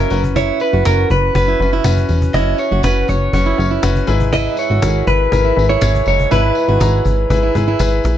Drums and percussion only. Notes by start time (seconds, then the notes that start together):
0.10 tambourine
0.24 cajon bass
0.36 cajon bass
0.60 cajon slap, tambourine
0.85 cajon bass, cajon slap, tambourine
1.10 cajon bass
1.35 cajon bass, tambourine
1.60 cajon slap, tambourine
1.84 cajon bass, cajon slap, tambourine
1.97 cajon bass
2.09 cajon slap, tambourine
2.22 cajon bass
2.34 cajon bass
2.58 cajon slap, tambourine
2.83 cajon bass, cajon slap, tambourine
3.08 cajon bass, tambourine
3.33 cajon bass, tambourine
3.58 cajon slap, tambourine
3.83 cajon bass, cajon slap, tambourine
3.95 cajon bass
4.07 tambourine
4.20 cajon bass
4.33 cajon bass
4.57 cajon slap, tambourine
4.82 cajon bass, cajon slap, tambourine
5.07 cajon bass
5.32 cajon bass, tambourine
5.57 cajon slap, tambourine
5.81 cajon bass, cajon slap, tambourine
5.95 cajon bass
6.06 tambourine
6.20 cajon bass
6.31 cajon bass, tambourine
6.55 cajon slap, tambourine
6.80 cajon bass, cajon slap, tambourine
7.05 cajon bass, tambourine
7.19 cajon slap
7.30 cajon bass, tambourine
7.55 cajon bass, tambourine
7.79 cajon bass, cajon slap, tambourine
8.04 cajon slap, tambourine